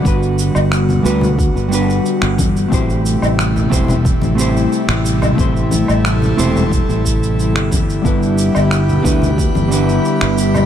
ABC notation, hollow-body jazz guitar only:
X:1
M:4/4
L:1/8
Q:1/4=90
K:Ador
V:1 name="Hollow-body jazz guitar"
[G,B,DFB]3 [G,B,DFB] z [G,B,DFB]3 | [A,CEGc]3 [A,CEGc] z [A,CEGc]3 | [A,CEGc]3 [A,CEGc] z4 | [G,B,DEB]3 [G,B,DEB] z [G,B,DEB]3 |]